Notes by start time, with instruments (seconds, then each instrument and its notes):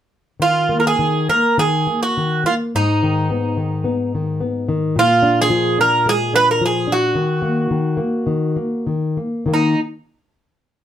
0.40 nylon-string guitar D#3, bouzouki F4
0.69 nylon-string guitar A#3
0.80 bouzouki A#4
0.87 bouzouki G#4
0.99 nylon-string guitar D#3
1.29 nylon-string guitar A#3, bouzouki A#4
1.58 nylon-string guitar D#3, bouzouki G#4
1.87 nylon-string guitar A#3
2.03 bouzouki F#4
2.17 nylon-string guitar D#3
2.44 nylon-string guitar A#3, bouzouki F4
2.75 nylon-string guitar G#2, bouzouki D#4
3.03 nylon-string guitar D#3
3.30 nylon-string guitar B3
3.57 nylon-string guitar D#3
3.84 nylon-string guitar B3
4.15 nylon-string guitar D#3
4.40 nylon-string guitar B3
4.69 nylon-string guitar D#3
4.96 nylon-string guitar A#2, bouzouki F4
5.22 nylon-string guitar D4
5.42 bouzouki G#4
5.50 nylon-string guitar F3
5.78 nylon-string guitar D4, bouzouki A#4
6.06 nylon-string guitar G#3, bouzouki G#4
6.34 nylon-string guitar D4, bouzouki B4
6.51 bouzouki A#4
6.61 nylon-string guitar F3
6.66 bouzouki G#4
6.87 nylon-string guitar D4
6.92 bouzouki F#4
7.15 nylon-string guitar D#3
7.42 nylon-string guitar A#3
7.71 nylon-string guitar D#3
7.97 nylon-string guitar A#3
8.27 nylon-string guitar D#3
8.56 nylon-string guitar A#3
8.87 nylon-string guitar D#3
9.17 nylon-string guitar A#3
9.46 nylon-string guitar D#3 A#3
9.54 bouzouki D#4